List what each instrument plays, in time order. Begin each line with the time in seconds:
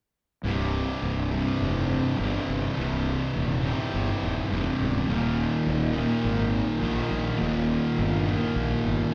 0.44 fingered electric bass C1, distorted electric guitar C2 G2 C3
1.02 fingered electric bass C1
1.31 distorted electric guitar C2 G2 C3
1.61 fingered electric bass F1
2.17 fingered electric bass G1, distorted electric guitar C2 G2 C3
2.48 fingered electric bass G1
2.75 fingered electric bass C1, distorted electric guitar C2 G2 C3
3.35 fingered electric bass D#1
3.62 distorted electric guitar C2 G2 C3
3.94 fingered electric bass G1
4.22 fingered electric bass D#1
4.48 fingered electric bass F1, distorted electric guitar C2 G2 C3
4.79 fingered electric bass C#1
5.07 fingered electric bass D#1, distorted electric guitar D#2 A#2 D#3
5.66 fingered electric bass D#1
5.93 distorted electric guitar A#2 D#3
5.97 distorted electric guitar D#2
6.24 fingered electric bass G#1
6.80 fingered electric bass A#1, distorted electric guitar D#2 A#2
6.84 distorted electric guitar D#3
7.11 fingered electric bass A#1
7.38 fingered electric bass D#1, distorted electric guitar D#2 A#2 D#3
7.98 fingered electric bass G1
8.27 distorted electric guitar D#2 A#2 D#3
8.55 fingered electric bass A#1
8.84 fingered electric bass G1